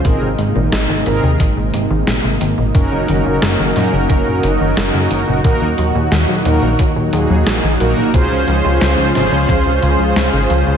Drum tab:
HH |xxxxxxxx|xxxxxxxx|xxxxxxxx|xxxxxxxx|
SD |--o---o-|--oo--o-|--o---o-|--oo--o-|
BD |o---o---|o---o---|o---o---|o---o---|